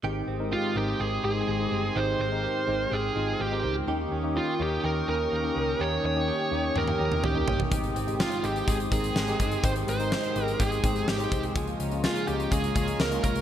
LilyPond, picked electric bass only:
\new Staff \with { instrumentName = "Picked electric bass" } { \clef bass \time 4/4 \key aes \major \tempo 4 = 125 aes,,8 aes,,8. r16 aes,,8 aes,,8 aes,,8 aes,,8 g,,8 | aes,,8 aes,,8. r16 aes,,8 aes,,8 aes,,8 aes,,8 des,8 | ees,8 ees,8. r16 ees,8 ees,8 ees,8 ees,8 des,8 | ees,8 ees,8. r16 ees,8 ees,8 ees,8 ees,8 g,,8 |
aes,,8 aes,,8. r16 aes,,8 aes,,8 aes,,8 aes,,8 g,,8 | aes,,8 aes,,8. r16 aes,,8 aes,,8 aes,,8 aes,,8 c,8 | des,8 des,8. r16 des,8 des,8 des,8 des,8 c,8 | }